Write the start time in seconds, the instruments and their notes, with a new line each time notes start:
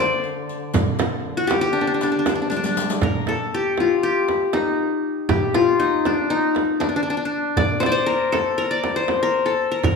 Already playing: duduk D3, qanun C5
0.00 qanun D5
0.24 riq
0.49 riq, darbuka ka
0.74 riq, darbuka dum, frame drum
0.99 riq, darbuka tek, frame drum
1.37 qanun F#4
1.47 qanun G4, riq, darbuka tek, frame drum
1.61 qanun G4
1.73 qanun D4, riq, darbuka ka
1.81 qanun D4
1.87 qanun D4
1.94 qanun D4
2.01 qanun D4, riq, darbuka tek
2.12 qanun D4
2.19 qanun D4
2.26 qanun D4, riq, darbuka tek, frame drum
2.35 qanun D4
2.42 qanun D4
2.50 qanun D4, riq
2.56 qanun D4
2.64 qanun D4, riq
2.77 riq
2.90 riq
3.01 qanun A#4, frame drum, darbuka dum
3.27 qanun A4, darbuka tek, frame drum
3.54 qanun G4
3.78 qanun F4, darbuka tek, frame drum
4.03 qanun G4, darbuka ka
4.28 darbuka tek, frame drum
4.53 qanun D#4, darbuka tek, frame drum
5.29 qanun G4, frame drum, darbuka dum
5.54 qanun F4, darbuka tek, frame drum
5.80 qanun D#4
6.05 qanun D4, frame drum
6.30 qanun D#4, darbuka ka
6.55 darbuka tek, frame drum
6.80 qanun D4, darbuka tek, frame drum
6.89 qanun D4
6.96 qanun D4
7.03 qanun D4
7.10 qanun D4
7.17 qanun D4
7.25 qanun D4
7.56 qanun D5, darbuka dum, frame drum
7.80 qanun C5, darbuka tek, frame drum
7.86 qanun D5
7.92 qanun C5
8.06 qanun A#4
8.32 qanun A4, darbuka tek, frame drum
8.58 qanun A#4, darbuka ka
8.71 qanun D5
8.84 darbuka tek, frame drum
8.96 qanun C5
9.08 darbuka tek, frame drum
9.23 qanun A#4
9.46 qanun A4
9.71 qanun A#4
9.83 qanun A#4, frame drum, darbuka dum